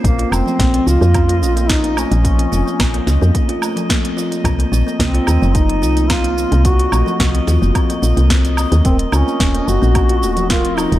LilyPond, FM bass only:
\new Staff \with { instrumentName = "FM bass" } { \clef bass \time 4/4 \key bes \minor \tempo 4 = 109 bes,,16 r16 f,,16 r16 bes,,16 r16 des,16 f,8. bes,,4~ bes,,16 bes,,16~ | bes,,8 f,,16 r16 bes,,16 r16 des,16 f,16 r2 | c,16 r16 bes,,16 r16 c,16 r16 ees,16 ges,,8. c,4~ c,16 c,16~ | c,8 bes,,16 r16 c,16 r16 ees,16 ges,,16 r8 bes,,16 c,4 ees,16 |
ees,,16 r16 des,16 r16 ees,,16 r16 ges,,16 bes,,8. ees,,4~ ees,,16 ees,,16 | }